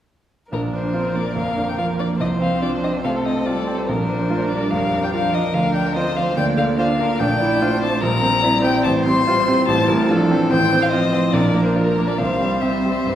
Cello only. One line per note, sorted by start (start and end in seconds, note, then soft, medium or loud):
0.52 1.37 F3 soft
1.36 1.79 D3 soft
1.78 2.62 F3 soft
2.63 3.06 F3 soft
3.05 3.48 A3 soft
3.47 3.89 G3 soft
3.88 4.31 F3 soft
4.30 4.52 A3 soft
4.50 5.14 G3 soft
5.12 5.54 F3 soft
5.55 6.39 F3 soft
6.38 7.21 A#3 soft
7.19 8.04 A3 medium
8.03 8.43 G3 soft
8.44 10.11 G3 medium
10.09 10.31 F3 medium
10.30 10.50 E3 medium
10.51 10.93 D#3 soft
10.92 11.75 F3 soft
11.76 12.20 F3 soft
12.18 13.15 G3 soft